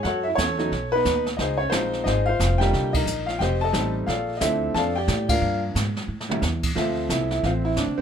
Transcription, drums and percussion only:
0.04 brush sweep, kick, snare
0.38 kick, snare, hi-hat pedal
0.59 snare
0.72 brush sweep, kick, snare
1.05 kick, snare, hi-hat pedal
1.26 snare
1.39 brush sweep, kick, snare
1.72 kick, snare, hi-hat pedal
1.93 snare
2.06 brush sweep, kick, snare
2.40 kick, snare, hi-hat pedal
2.61 snare
2.73 brush sweep, kick, snare
2.94 kick, crash
3.07 hi-hat pedal
3.28 snare
3.40 brush sweep, kick, snare
3.74 kick, snare, hi-hat pedal
4.08 brush sweep, kick, snare
4.41 kick, snare, hi-hat pedal
4.75 brush sweep, kick, snare
5.08 kick, snare, hi-hat pedal
5.29 kick, crash
5.42 brush sweep
5.75 kick, snare, hi-hat pedal
5.97 snare
6.21 snare
6.31 mid tom
6.42 snare, hi-hat pedal
6.63 kick, crash
6.76 brush sweep, kick, snare
7.10 kick, snare, hi-hat pedal
7.31 snare
7.43 brush sweep, kick, snare
7.77 kick, snare, hi-hat pedal

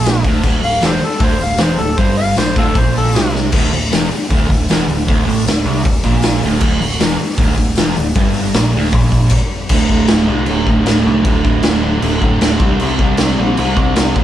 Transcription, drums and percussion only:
0.05 snare, open hi-hat, tambourine
0.24 kick, open hi-hat
0.43 kick, crash
0.63 open hi-hat
0.81 snare, open hi-hat, tambourine
1.00 open hi-hat
1.11 snare
1.20 kick, open hi-hat
1.39 snare, open hi-hat
1.58 snare, open hi-hat, tambourine
1.78 open hi-hat
1.98 kick, open hi-hat
2.18 open hi-hat
2.37 snare, open hi-hat, tambourine
2.56 kick, open hi-hat
2.75 kick, open hi-hat
2.95 open hi-hat
3.12 snare, open hi-hat, tambourine
3.35 snare
3.52 kick, crash
3.73 open hi-hat
3.92 snare, open hi-hat, tambourine
4.12 open hi-hat
4.31 kick, open hi-hat
4.50 kick, snare, open hi-hat
4.69 snare, open hi-hat, tambourine
4.89 open hi-hat
5.08 kick, open hi-hat
5.29 open hi-hat
5.47 snare, open hi-hat, tambourine
5.67 open hi-hat
5.78 snare
5.85 kick, open hi-hat
6.04 kick, snare, open hi-hat
6.22 snare, open hi-hat, tambourine
6.43 open hi-hat
6.61 kick, crash
6.82 open hi-hat
7.00 snare, open hi-hat, tambourine
7.19 open hi-hat
7.29 snare
7.36 kick, open hi-hat
7.57 kick, snare, open hi-hat
7.75 snare, open hi-hat, tambourine
7.97 open hi-hat
8.15 kick, open hi-hat
8.33 open hi-hat
8.54 snare, open hi-hat, tambourine
8.73 open hi-hat
8.85 snare
8.91 kick, open hi-hat
9.12 kick, snare, open hi-hat
9.30 kick, crash
9.69 kick, crash
9.89 kick
10.08 snare, crash
10.46 crash
10.67 kick
10.86 snare, crash
11.25 kick, crash
11.45 kick
11.63 snare, crash
12.02 crash
12.22 kick
12.41 snare, crash
12.60 kick
12.80 crash
12.99 kick
13.17 snare, crash
13.57 crash
13.77 kick
13.96 snare, crash
14.16 kick

